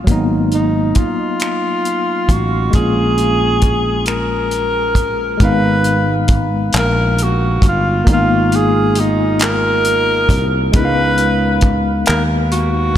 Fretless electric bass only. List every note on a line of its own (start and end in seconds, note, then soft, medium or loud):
0.08 0.92 G#1 medium
2.29 2.70 A1 medium
2.75 5.37 A#1 medium
5.41 6.70 G#1 medium
6.74 7.59 A#1 medium
7.63 8.03 G1 medium
8.07 10.25 G#1 medium
10.30 10.70 C2 medium
10.75 12.03 C#2 loud
12.09 12.97 D#2 medium